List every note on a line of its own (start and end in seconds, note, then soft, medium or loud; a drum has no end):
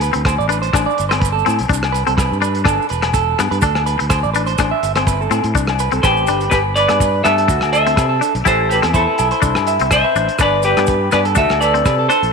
0.00 0.10 D2 loud
0.00 0.25 B4 medium
0.00 closed hi-hat medium
0.00 maracas medium
0.13 0.37 D2 medium
0.13 0.32 C4 medium
0.13 closed hi-hat medium
0.25 0.38 C5 medium
0.25 kick medium
0.25 cross-stick medium
0.25 closed hi-hat medium
0.25 low agogo medium
0.25 maracas medium
0.38 0.70 A1 medium
0.38 0.49 D5 medium
0.38 maracas soft
0.49 0.67 D4 medium
0.49 0.61 B4 medium
0.49 closed hi-hat medium
0.49 maracas medium
0.62 0.85 C5 medium
0.62 closed hi-hat soft
0.62 maracas soft
0.73 0.85 A1 medium
0.73 0.92 D4 medium
0.73 kick medium
0.73 cross-stick medium
0.73 closed hi-hat soft
0.73 low agogo medium
0.73 maracas loud
0.86 1.09 D5 medium
0.90 maracas soft
0.98 1.42 G1 medium
0.98 closed hi-hat soft
0.98 maracas medium
1.09 1.29 C4 medium
1.09 1.20 C5 medium
1.09 cross-stick medium
1.09 closed hi-hat medium
1.09 low agogo medium
1.14 maracas soft
1.20 1.32 B4 medium
1.20 kick medium
1.20 closed hi-hat soft
1.25 maracas medium
1.32 1.56 A4 medium
1.39 maracas soft
1.46 1.58 A2 medium
1.46 1.64 C4 medium
1.46 closed hi-hat soft
1.46 low agogo medium
1.46 maracas medium
1.59 1.69 B1 medium
1.59 closed hi-hat soft
1.59 maracas soft
1.69 2.03 C2 loud
1.69 1.88 D4 medium
1.69 kick medium
1.69 closed hi-hat soft
1.73 maracas medium
1.83 cross-stick medium
1.83 low agogo medium
1.83 maracas soft
1.92 2.06 B4 medium
1.92 closed hi-hat soft
1.92 maracas medium
2.06 2.29 C2 medium
2.06 2.25 C4 medium
2.06 2.17 A4 medium
2.06 closed hi-hat soft
2.17 2.40 B4 medium
2.17 kick medium
2.17 cross-stick medium
2.17 closed hi-hat medium
2.17 low agogo medium
2.17 maracas medium
2.31 2.63 G2 medium
2.31 maracas soft
2.41 2.60 D4 medium
2.41 2.65 B4 medium
2.41 closed hi-hat soft
2.41 maracas medium
2.55 closed hi-hat soft
2.55 maracas soft
2.65 2.77 G1 loud
2.65 2.83 D4 medium
2.65 2.89 A4 medium
2.65 kick medium
2.65 cross-stick medium
2.65 closed hi-hat soft
2.65 low agogo medium
2.65 maracas medium
2.82 maracas soft
2.89 3.34 E1 medium
2.89 3.13 B4 medium
2.89 closed hi-hat soft
2.89 maracas medium
3.02 muted clean electric guitar stroke medium
3.02 cross-stick medium
3.02 closed hi-hat soft
3.02 low agogo medium
3.02 maracas soft
3.13 3.37 A4 medium
3.13 kick medium
3.13 closed hi-hat soft
3.13 maracas medium
3.38 3.51 G2 medium
3.38 3.58 B3 medium
3.38 cross-stick medium
3.38 closed hi-hat soft
3.38 low agogo medium
3.38 maracas medium
3.51 3.61 G2 medium
3.51 3.61 B4 medium
3.51 closed hi-hat soft
3.51 maracas soft
3.62 3.96 D2 loud
3.62 3.81 D4 medium
3.62 3.85 A4 medium
3.62 kick medium
3.62 closed hi-hat medium
3.62 maracas medium
3.75 cross-stick medium
3.75 low agogo medium
3.75 maracas soft
3.86 4.09 B4 medium
3.86 closed hi-hat soft
3.86 maracas medium
3.99 4.22 D2 medium
3.99 muted clean electric guitar stroke medium
3.99 closed hi-hat medium
4.09 4.23 C5 medium
4.09 kick medium
4.09 cross-stick medium
4.09 closed hi-hat medium
4.09 low agogo medium
4.09 maracas medium
4.23 4.56 A1 medium
4.23 4.33 D5 medium
4.23 maracas soft
4.34 4.54 D4 medium
4.34 4.46 B4 medium
4.34 closed hi-hat medium
4.34 maracas medium
4.46 4.70 C5 medium
4.46 closed hi-hat soft
4.46 maracas soft
4.58 4.71 A1 medium
4.58 4.78 D4 medium
4.58 kick medium
4.58 cross-stick medium
4.58 closed hi-hat soft
4.58 low agogo medium
4.58 maracas medium
4.71 4.95 E5 medium
4.83 5.26 G1 medium
4.83 closed hi-hat medium
4.83 maracas medium
4.96 5.15 C4 medium
4.96 5.07 C5 medium
4.96 cross-stick medium
4.96 closed hi-hat medium
4.96 low agogo medium
4.96 maracas soft
5.07 5.20 B4 medium
5.07 kick medium
5.07 closed hi-hat soft
5.07 maracas medium
5.21 5.44 A4 medium
5.21 maracas soft
5.30 5.43 A2 medium
5.30 5.50 C4 medium
5.30 closed hi-hat soft
5.30 low agogo medium
5.30 maracas medium
5.44 5.54 A2 medium
5.44 closed hi-hat soft
5.44 maracas soft
5.55 5.89 C2 loud
5.55 5.74 D4 medium
5.55 kick medium
5.55 closed hi-hat medium
5.55 maracas medium
5.67 cross-stick medium
5.67 low agogo medium
5.67 maracas soft
5.79 5.93 B4 medium
5.79 closed hi-hat soft
5.79 maracas medium
5.91 6.03 C2 medium
5.91 6.11 C4 medium
5.91 6.04 A4 medium
5.91 closed hi-hat soft
5.91 maracas soft
6.03 6.26 A1 medium
6.03 6.49 G4 medium
6.03 6.50 G4 medium
6.03 6.27 B4 medium
6.03 6.54 C5 medium
6.03 kick medium
6.03 cross-stick medium
6.03 closed hi-hat medium
6.03 low agogo medium
6.03 maracas medium
6.17 maracas soft
6.27 6.50 G1 medium
6.27 6.47 D4 medium
6.27 6.52 B4 medium
6.27 closed hi-hat soft
6.27 maracas medium
6.41 closed hi-hat soft
6.41 maracas soft
6.50 6.86 G1 medium
6.50 6.58 G4 medium
6.50 6.63 G4 medium
6.50 6.57 B4 medium
6.50 6.76 B4 medium
6.50 muted clean electric guitar stroke medium
6.50 kick medium
6.50 cross-stick medium
6.50 closed hi-hat soft
6.50 low agogo medium
6.50 maracas medium
6.76 7.22 B4 medium
6.76 7.23 B4 medium
6.76 7.21 D5 medium
6.76 7.00 D5 medium
6.76 closed hi-hat soft
6.76 maracas medium
6.88 7.22 G2 medium
6.88 7.07 B3 medium
6.88 cross-stick medium
6.88 closed hi-hat soft
6.88 low agogo medium
6.88 maracas soft
7.00 7.25 B4 medium
7.00 kick medium
7.00 closed hi-hat soft
7.00 maracas medium
7.24 7.47 G2 medium
7.24 7.44 B3 medium
7.24 7.70 A4 medium
7.24 7.37 A4 medium
7.24 7.71 E5 medium
7.24 cross-stick medium
7.24 closed hi-hat soft
7.24 low agogo medium
7.24 maracas medium
7.38 7.49 A4 medium
7.38 closed hi-hat soft
7.48 7.61 D2 medium
7.48 7.73 F#4 medium
7.48 muted clean electric guitar stroke medium
7.48 kick medium
7.48 closed hi-hat soft
7.48 maracas medium
7.61 7.94 D2 medium
7.61 cross-stick medium
7.61 low agogo medium
7.61 maracas soft
7.73 7.85 A4 medium
7.73 8.20 A4 medium
7.73 8.18 C5 medium
7.73 8.18 E5 medium
7.73 closed hi-hat soft
7.73 maracas medium
7.86 8.05 C4 medium
7.86 7.96 A4 medium
7.86 closed hi-hat medium
7.96 8.19 C3 medium
7.96 8.09 B4 medium
7.96 kick medium
7.96 cross-stick medium
7.96 closed hi-hat medium
7.96 low agogo medium
7.96 maracas medium
8.09 8.33 A4 medium
8.21 8.40 D4 medium
8.21 closed hi-hat medium
8.21 maracas medium
8.35 8.45 B1 medium
8.35 closed hi-hat soft
8.35 maracas soft
8.45 8.80 A1 medium
8.45 8.64 E4 medium
8.45 8.69 G4 medium
8.45 8.68 A4 medium
8.45 8.70 C5 medium
8.45 kick medium
8.45 cross-stick medium
8.45 closed hi-hat soft
8.45 low agogo medium
8.45 maracas medium
8.50 8.71 A4 medium
8.69 8.76 G4 medium
8.69 8.93 A4 medium
8.69 8.79 B4 medium
8.69 closed hi-hat medium
8.69 maracas medium
8.74 8.84 G4 medium
8.82 9.05 E2 medium
8.82 9.01 C4 medium
8.82 cross-stick medium
8.82 closed hi-hat soft
8.82 low agogo medium
8.82 maracas soft
8.94 9.87 E4 medium
8.94 9.89 E4 medium
8.94 9.91 A4 medium
8.94 9.07 C5 medium
8.94 kick medium
8.94 closed hi-hat soft
8.94 maracas medium
9.07 9.18 B4 medium
9.18 9.31 B1 medium
9.18 9.31 A4 medium
9.18 closed hi-hat soft
9.18 low agogo medium
9.18 maracas medium
9.31 9.55 C5 medium
9.31 closed hi-hat soft
9.42 9.54 C2 loud
9.42 9.61 D4 medium
9.42 kick medium
9.42 closed hi-hat soft
9.42 maracas medium
9.55 9.77 G2 medium
9.55 cross-stick medium
9.55 low agogo medium
9.55 maracas soft
9.67 9.91 E5 medium
9.67 closed hi-hat soft
9.67 maracas medium
9.79 10.02 C2 medium
9.79 10.00 C4 medium
9.79 closed hi-hat soft
9.91 10.37 C5 medium
9.91 10.38 C5 medium
9.91 10.37 E5 loud
9.91 kick medium
9.91 cross-stick medium
9.91 closed hi-hat soft
9.91 low agogo medium
9.91 maracas medium
10.04 10.28 B4 medium
10.15 10.27 A1 medium
10.15 10.34 D4 medium
10.15 closed hi-hat soft
10.15 maracas medium
10.29 closed hi-hat soft
10.29 maracas soft
10.39 10.73 G1 medium
10.39 10.59 D4 medium
10.39 10.63 B4 medium
10.39 10.66 D5 loud
10.39 kick medium
10.39 cross-stick medium
10.39 closed hi-hat soft
10.39 low agogo medium
10.39 maracas medium
10.62 11.09 G4 medium
10.62 11.10 G4 medium
10.62 11.10 B4 medium
10.62 10.88 D5 medium
10.62 closed hi-hat soft
10.62 maracas medium
10.77 11.09 G2 medium
10.77 10.97 B3 medium
10.77 cross-stick medium
10.77 closed hi-hat soft
10.77 low agogo medium
10.77 maracas soft
10.86 11.12 B4 medium
10.86 kick medium
10.86 closed hi-hat soft
10.86 maracas medium
11.11 11.35 G2 medium
11.11 11.31 B3 medium
11.11 11.25 G4 medium
11.11 11.19 B4 medium
11.11 11.25 B4 medium
11.11 11.19 D5 medium
11.11 cross-stick medium
11.11 closed hi-hat soft
11.11 low agogo medium
11.11 maracas medium
11.25 11.36 A4 medium
11.25 closed hi-hat soft
11.35 11.49 D2 loud
11.35 11.54 D4 medium
11.35 11.60 F#4 medium
11.35 11.60 A4 medium
11.35 11.60 E5 medium
11.35 kick medium
11.35 closed hi-hat soft
11.35 maracas medium
11.40 11.61 A4 medium
11.49 11.82 D2 medium
11.49 cross-stick medium
11.49 low agogo medium
11.49 maracas soft
11.61 11.74 A4 medium
11.61 12.07 A4 medium
11.61 12.06 B4 medium
11.61 12.06 D5 loud
11.61 closed hi-hat medium
11.61 maracas medium
11.74 11.93 C4 medium
11.74 closed hi-hat soft
11.85 12.07 C3 medium
11.85 11.98 B4 medium
11.85 kick medium
11.85 cross-stick medium
11.85 closed hi-hat medium
11.85 low agogo medium
11.85 maracas medium
11.99 12.22 A4 medium
12.09 12.28 D4 medium
12.09 12.33 A4 medium
12.09 12.33 C5 medium
12.09 closed hi-hat medium
12.09 maracas medium
12.23 12.33 A#1 medium
12.23 closed hi-hat soft
12.23 maracas soft